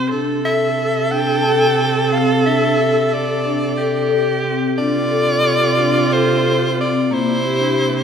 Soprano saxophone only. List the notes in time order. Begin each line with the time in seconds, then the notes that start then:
0.45 E5
1.12 G5
2.12 F5
2.46 E5
3.14 D5
4.78 D5
6.13 C5
6.81 D5
7.14 C5